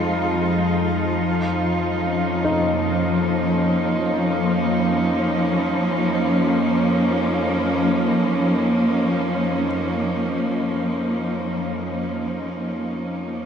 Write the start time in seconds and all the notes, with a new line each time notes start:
Already playing: F2 F3 G#3 D#4 F4
1.22 F3
2.02 C#4
2.45 D#4
2.52 A#3